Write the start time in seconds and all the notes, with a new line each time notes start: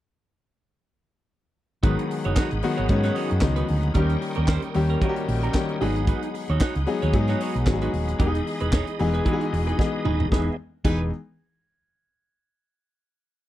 1.83 G#1 D#3 F#3 G#3 B3 D#4 F#4 G#4 B4 F#5 B5 D#6, kick, closed hi-hat
1.98 muted clean electric guitar stroke, closed hi-hat
2.11 muted clean electric guitar stroke, open hi-hat
2.24 F#1 D#4 F#4 C#5, closed hi-hat
2.36 D#4 F#4 C#5, kick, snare, clap
2.51 G#1, muted clean electric guitar stroke, closed hi-hat
2.62 D#3 F#3 G#3 B3 F#4, muted clean electric guitar stroke, open hi-hat
2.77 G#1 D#4 F#4 C#5, closed hi-hat
2.89 G#2 D#3 F#3 G#3 B3 C#4, muted clean electric guitar stroke, kick, closed hi-hat
3.03 D#4 F#4 C#5, snare, closed hi-hat
3.15 D#4 F#4 C#5, open hi-hat
3.30 F#2, muted clean electric guitar stroke, closed hi-hat
3.41 C#2 D#3 F#3 G#3 B3 D#4, muted clean electric guitar stroke, kick, snare, clap
3.56 D#4 F#4 B4, closed hi-hat
3.68 D2, muted clean electric guitar stroke, open hi-hat
3.83 muted clean electric guitar stroke, closed hi-hat
3.94 D#2 D#3 G3 A#3 C#4 G4 A#4 G5 C#6 D#6, kick, closed hi-hat
4.09 muted clean electric guitar stroke, closed hi-hat
4.21 muted clean electric guitar stroke, open hi-hat
4.35 D#2 C#4 G4 A#4, closed hi-hat
4.48 C#4 G4 C5, kick, snare, clap
4.62 muted clean electric guitar stroke, closed hi-hat
4.74 D#2 D#3 G3 A#3 C#4 G4, muted clean electric guitar stroke, open hi-hat
4.90 C#4 G4 A#4, closed hi-hat
5.01 D#3 G3 A#3 C#4 F#4 G4 A#4, kick, closed hi-hat
5.09 G4
5.16 muted clean electric guitar stroke, closed hi-hat
5.28 A#1, muted clean electric guitar stroke, open hi-hat
5.43 C#4 G4 A#4, closed hi-hat
5.54 D#3 G3 A#3 C#4 G4, kick, snare, clap
5.69 muted clean electric guitar stroke, closed hi-hat
5.80 G#1 F#3 G#3 B3 D#4 F#4 G#4 B4 F#5 B5, open hi-hat
5.96 muted clean electric guitar stroke, closed hi-hat
6.07 D#4 F#4 B4, kick, closed hi-hat
6.22 muted clean electric guitar stroke, closed hi-hat
6.34 muted clean electric guitar stroke, open hi-hat
6.48 D#2 D#4 F#4 C#5, closed hi-hat
6.61 D#4 F#4 C#5, kick, snare, clap
6.75 C#2, muted clean electric guitar stroke, closed hi-hat
6.86 F#3 G#3 B3 D#4 G#4, muted clean electric guitar stroke, open hi-hat
7.02 D#2 D#4 F#4 C#5, closed hi-hat
7.13 G#2 F#3 G#3 B3 D#4 G#4, muted clean electric guitar stroke, kick, closed hi-hat
7.28 D#4 F#4 C#5, snare, closed hi-hat
7.40 D#4 F#4 C#5, open hi-hat
7.55 B1, muted clean electric guitar stroke, closed hi-hat
7.66 G#1 F#3 G#3 B3 D#4 F#4, muted clean electric guitar stroke, kick, snare, clap
7.74 G#4
7.81 D#4 F#4 B4, closed hi-hat
7.93 D#1, open hi-hat
8.08 muted clean electric guitar stroke, closed hi-hat
8.19 E1 E3 G#3 B3 D#4 G4 G#4 B4 D#5 D#6, kick, closed hi-hat
8.27 G#4
8.34 muted clean electric guitar stroke, closed hi-hat
8.46 muted clean electric guitar stroke, open hi-hat
8.60 E1 D#4 G#4 B4, closed hi-hat
8.72 D#4 G#4 C#5, kick, snare, clap
8.87 muted clean electric guitar stroke, closed hi-hat
8.99 E1 E3 G#3 B3 D#4 G#4, muted clean electric guitar stroke, open hi-hat
9.14 D#4 G#4 B4, closed hi-hat
9.25 E3 G#3 B3 D#4 F#4 G#4 B4, kick, closed hi-hat
9.33 G#4
9.40 muted clean electric guitar stroke, closed hi-hat
9.52 E1, muted clean electric guitar stroke, open hi-hat
9.67 D#4 G#4 B4, closed hi-hat
9.78 E3 G#3 B3 D#4 G#4, kick, snare
9.93 muted clean electric guitar stroke
10.05 D#1 D#4 G#4 B4, mid tom
10.20 muted clean electric guitar stroke, floor tom
10.31 E1 E3 G#3 B3 D#4 G#4 B4 D#5 E5, kick, snare
10.84 E1 E3 G#3 B3 D#4 G#4 B4, kick, crash